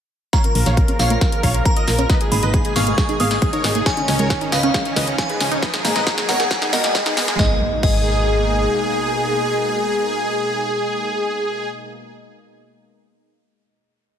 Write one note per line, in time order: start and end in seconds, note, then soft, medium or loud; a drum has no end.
0.33 2.08 C#3 medium
0.33 2.08 F3 medium
0.33 2.08 A#3 medium
0.33 2.08 F4 medium
0.33 0.37 F4 medium
0.33 0.41 C#5 medium
0.33 0.41 F5 medium
0.33 0.91 A#5 medium
0.33 kick loud
0.33 snare soft
0.33 closed hi-hat medium
0.33 riser medium
0.44 0.48 C#4 medium
0.44 0.53 A#4 medium
0.44 closed hi-hat medium
0.55 0.64 A#1 loud
0.55 0.64 A#3 medium
0.55 0.64 A#4 medium
0.55 open hi-hat loud
0.66 0.84 A#1 loud
0.66 0.75 F3 medium
0.66 0.75 C#5 medium
0.66 0.75 F5 medium
0.66 snare soft
0.66 closed hi-hat medium
0.77 0.81 F4 medium
0.77 0.86 A#4 medium
0.77 kick loud
0.77 closed hi-hat medium
0.88 0.92 C#4 medium
0.88 0.97 A#4 medium
0.88 closed hi-hat medium
0.99 1.17 A#1 loud
0.99 1.08 C#5 medium
0.99 1.08 F5 medium
0.99 1.57 F5 medium
0.99 snare soft
0.99 open hi-hat medium
1.10 1.16 A#3 loud
1.10 1.19 A#4 medium
1.10 closed hi-hat medium
1.21 1.31 F3 medium
1.21 1.30 A#4 medium
1.21 kick loud
1.21 snare soft
1.21 closed hi-hat medium
1.32 1.41 A#4 medium
1.32 closed hi-hat medium
1.43 1.62 A#1 medium
1.43 1.52 C#5 medium
1.43 1.52 F5 medium
1.43 kick medium
1.43 open hi-hat loud
1.54 1.63 A#4 medium
1.54 closed hi-hat medium
1.65 1.74 A#4 medium
1.65 2.23 A#5 medium
1.65 kick loud
1.65 closed hi-hat medium
1.76 1.85 A#4 medium
1.76 1.85 D#5 medium
1.76 closed hi-hat medium
1.88 2.06 A#1 medium
1.88 1.97 F4 medium
1.88 1.96 A#4 medium
1.88 snare medium
1.88 open hi-hat medium
1.99 2.05 C#4 loud
1.99 2.07 A#4 medium
1.99 closed hi-hat medium
2.10 3.84 B2 medium
2.10 3.84 G#3 medium
2.10 3.84 A#3 medium
2.10 7.35 D#4 medium
2.10 2.18 B4 medium
2.10 2.18 D#5 loud
2.10 kick loud
2.10 snare medium
2.10 closed hi-hat medium
2.21 2.29 G#4 medium
2.21 closed hi-hat medium
2.32 2.41 G#1 loud
2.32 2.38 A#3 medium
2.32 2.40 G#4 medium
2.32 2.74 B5 medium
2.32 open hi-hat loud
2.43 2.61 G#1 loud
2.43 2.46 G#3 medium
2.43 2.51 B4 medium
2.43 2.51 D#5 loud
2.43 closed hi-hat medium
2.54 2.63 D#4 medium
2.54 2.62 G#4 medium
2.54 kick loud
2.54 closed hi-hat medium
2.65 2.73 G#4 medium
2.65 closed hi-hat medium
2.76 2.94 G#1 loud
2.76 2.85 B3 medium
2.76 2.84 G#4 medium
2.76 2.84 F5 medium
2.76 3.18 C#6 medium
2.76 snare medium
2.76 open hi-hat medium
2.87 2.90 A#3 medium
2.87 2.95 G#4 medium
2.87 closed hi-hat medium
2.98 3.02 G#3 medium
2.98 3.06 G#4 medium
2.98 kick loud
2.98 snare medium
2.98 closed hi-hat medium
3.09 3.18 D#4 medium
3.09 3.17 G#4 medium
3.09 closed hi-hat medium
3.20 3.38 G#1 loud
3.20 3.26 B3 medium
3.20 3.28 G#4 medium
3.20 3.28 F5 loud
3.20 3.77 D#6 medium
3.20 open hi-hat loud
3.31 3.35 A#3 medium
3.31 3.39 G#4 medium
3.31 snare medium
3.31 closed hi-hat medium
3.42 3.48 G#3 medium
3.42 3.50 G#4 medium
3.42 kick loud
3.42 closed hi-hat medium
3.53 3.62 D#4 loud
3.53 3.61 A#4 medium
3.53 3.61 C#5 medium
3.53 closed hi-hat medium
3.64 3.82 G#1 medium
3.64 3.73 B3 medium
3.64 3.72 G#4 medium
3.64 snare medium
3.64 open hi-hat medium
3.75 3.79 A#3 medium
3.75 3.83 G#4 medium
3.75 closed hi-hat medium
3.86 7.36 G#2 medium
3.86 5.61 D#3 medium
3.86 5.61 C#4 medium
3.86 3.90 G#4 medium
3.86 3.94 A#4 medium
3.86 3.94 C#5 loud
3.86 4.43 G#5 loud
3.86 kick loud
3.86 snare medium
3.86 closed hi-hat medium
3.97 4.06 C#4 medium
3.97 4.01 D#4 medium
3.97 closed hi-hat medium
4.08 4.17 C#2 loud
4.08 4.17 C#4 medium
4.08 snare medium
4.08 open hi-hat loud
4.19 4.37 C#2 loud
4.19 4.28 G#3 medium
4.19 4.28 A#4 medium
4.19 4.28 C#5 medium
4.19 closed hi-hat medium
4.30 4.39 C#4 medium
4.30 4.34 G#4 medium
4.30 kick loud
4.30 snare medium
4.30 closed hi-hat medium
4.41 4.50 C#4 medium
4.41 4.45 D#4 medium
4.41 closed hi-hat medium
4.52 4.70 C#2 loud
4.52 4.61 B4 medium
4.52 4.61 D#5 medium
4.52 5.10 F5 medium
4.52 snare medium
4.52 open hi-hat loud
4.63 4.69 C#4 loud
4.63 4.72 C#4 medium
4.63 closed hi-hat medium
4.74 4.84 G#3 medium
4.74 4.83 C#4 medium
4.74 kick loud
4.74 snare medium
4.74 closed hi-hat medium
4.85 4.94 C#4 medium
4.85 closed hi-hat medium
4.96 5.15 C#2 medium
4.96 5.05 B4 medium
4.96 5.05 D#5 loud
4.96 kick medium
4.96 snare medium
4.96 open hi-hat loud
5.07 5.16 C#4 medium
5.07 closed hi-hat medium
5.18 5.27 C#4 medium
5.18 5.76 G#5 medium
5.18 kick loud
5.18 snare medium
5.18 closed hi-hat medium
5.29 5.38 G#4 medium
5.29 5.38 B4 medium
5.29 closed hi-hat medium
5.40 5.59 C#2 medium
5.40 5.49 C#4 medium
5.40 5.50 G#4 medium
5.40 snare medium
5.40 open hi-hat loud
5.51 5.60 C#4 medium
5.51 5.58 D#4 loud
5.51 closed hi-hat medium
5.62 7.37 B2 medium
5.62 7.37 A#3 medium
5.62 5.71 B4 medium
5.62 5.71 D#5 loud
5.62 kick loud
5.62 snare loud
5.62 closed hi-hat medium
5.74 5.82 G#4 medium
5.74 snare medium
5.74 closed hi-hat medium
5.85 5.94 G#1 loud
5.85 5.91 A#3 medium
5.85 5.93 G#4 medium
5.85 6.27 A#5 medium
5.85 snare medium
5.85 open hi-hat loud
5.96 6.14 G#1 loud
5.96 5.99 G#3 medium
5.96 6.04 B4 medium
5.96 6.04 D#5 loud
5.96 snare medium
5.96 closed hi-hat medium
6.07 6.16 D#4 medium
6.07 6.15 G#4 medium
6.07 kick loud
6.07 snare loud
6.07 closed hi-hat medium
6.18 6.26 G#4 medium
6.18 snare medium
6.18 closed hi-hat medium
6.29 6.47 G#1 loud
6.29 6.38 B3 medium
6.29 6.37 A#4 medium
6.29 6.37 C#5 medium
6.29 6.71 F#5 medium
6.29 snare loud
6.29 open hi-hat loud
6.40 6.43 A#3 medium
6.40 6.48 G#4 medium
6.40 snare medium
6.40 closed hi-hat medium
6.51 6.54 G#3 medium
6.51 6.59 G#4 medium
6.51 kick loud
6.51 snare loud
6.51 closed hi-hat medium
6.62 6.71 D#4 medium
6.62 6.70 G#4 medium
6.62 snare medium
6.62 closed hi-hat medium
6.73 6.91 G#1 loud
6.73 6.79 B3 medium
6.73 6.81 F#4 medium
6.73 6.81 A#4 medium
6.73 7.30 D#5 medium
6.73 snare loud
6.73 open hi-hat loud
6.84 6.88 A#3 medium
6.84 6.92 G#4 medium
6.84 snare loud
6.84 closed hi-hat medium
6.95 7.01 G#3 medium
6.95 7.03 G#4 medium
6.95 kick loud
6.95 snare loud
6.95 closed hi-hat medium
7.06 7.14 B3 medium
7.06 7.15 D#4 loud
7.06 7.14 G#4 loud
7.06 snare medium
7.06 closed hi-hat medium
7.17 7.35 G#1 medium
7.17 7.26 B3 medium
7.17 7.25 G#4 medium
7.17 snare loud
7.17 open hi-hat loud
7.28 7.32 A#3 medium
7.28 7.36 G#4 medium
7.28 snare loud
7.28 closed hi-hat medium
7.39 7.51 G#1 loud
7.39 11.68 B2 medium
7.39 7.51 G#3 loud
7.39 11.68 G#3 medium
7.39 11.68 A#3 medium
7.39 11.68 D#4 medium
7.39 7.51 G#4 medium
7.39 7.51 D#5 medium
7.39 kick loud
7.39 snare medium
7.39 impact medium
7.83 8.67 G#1 loud
7.83 7.95 G#3 medium
7.83 11.68 G#4 loud
7.83 12.38 D#5 medium
7.83 kick loud
7.83 crash medium